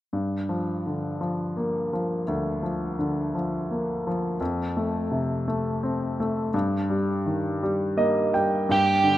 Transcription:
0.13 grand piano G2
0.49 grand piano F3
0.86 grand piano D3
1.21 grand piano F3
1.57 grand piano A#3
1.93 grand piano F3
2.28 grand piano D2
2.63 grand piano F3
2.99 grand piano D3
3.35 grand piano F3
3.71 grand piano A#3
4.07 grand piano F3
4.41 grand piano F2
4.77 grand piano A3
5.11 grand piano C3
5.48 grand piano A3
5.83 grand piano C4
6.20 grand piano A3
6.54 grand piano G2
6.90 grand piano G3
7.26 grand piano D#3
7.63 grand piano G3
7.97 grand piano A#3 D#5
8.34 grand piano G3 G5
8.69 grand piano G2, lead electric guitar G4
9.04 grand piano D3

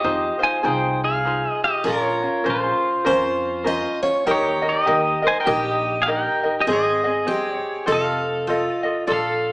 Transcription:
Already playing: pedal steel guitar G4 D#5, steel-string acoustic guitar G#4
0.04 upright bass F2, ukulele D#4 F4 C5
0.39 ukulele D#4 F4 C5
0.43 pedal steel guitar C5 G#5
0.63 upright bass C2, ukulele D#4 F4 G#4 C5, pedal steel guitar C5 G5
1.04 pedal steel guitar G#4 F5
1.25 ukulele D#4 F4 C5
1.51 pedal steel guitar D#5
1.64 pedal steel guitar G4 D#5
1.84 upright bass A#1, ukulele C#4 F4 A#4, pedal steel guitar F4 C#5, steel-string acoustic guitar A#4
2.22 ukulele C#4 F4
2.44 upright bass A#1, ukulele C#4 F4 A#4 C5
2.50 pedal steel guitar F4 C5
2.65 steel-string acoustic guitar G#4
3.05 upright bass F2, ukulele C#4 F4 A#4 C5, steel-string acoustic guitar C5
3.64 ukulele C#4 F4 A#4 C5, steel-string acoustic guitar D#5
4.03 ukulele C#4 F4, steel-string acoustic guitar C#5
4.26 upright bass D#2, ukulele D#4 G4 A#4 D#5, steel-string acoustic guitar A#4
4.31 pedal steel guitar G4 C#5
4.62 ukulele D#4 A#4 D#5
4.69 pedal steel guitar G4 D#5
4.86 upright bass D#2, ukulele D#4 G4 A#4 D#5
5.22 ukulele D#4 A#4 D#5
5.27 pedal steel guitar C5 G#5
5.40 pedal steel guitar A#4 G5
5.45 upright bass A#1, ukulele D#4 G4 A#4 D#5, steel-string acoustic guitar G4
5.51 pedal steel guitar G4 D#5
6.02 pedal steel guitar G#4 F5
6.06 ukulele D#4 G4 A#4 D#5
6.12 pedal steel guitar A#4 G5
6.43 ukulele D#4 A#4 D#5
6.60 pedal steel guitar G4 D#5
6.67 upright bass G#1, ukulele C4 G#4 C5 D#5, steel-string acoustic guitar G#4
6.72 pedal steel guitar G#4 D#5
7.04 ukulele C4 G#4 D#5
7.27 upright bass G1, ukulele C4 C5 D#5, steel-string acoustic guitar G4
7.56 pedal steel guitar C#5
7.86 upright bass F1, ukulele F4 A4 C5 D#5, steel-string acoustic guitar A4
7.92 pedal steel guitar A4 F5
8.47 steel-string acoustic guitar F4, ukulele F4 A4 C5 D#5
8.58 pedal steel guitar D#5
8.83 ukulele F4 A4 D#5
9.07 upright bass A#1, ukulele F4 A4 D5, steel-string acoustic guitar A4
9.12 pedal steel guitar A4 F5

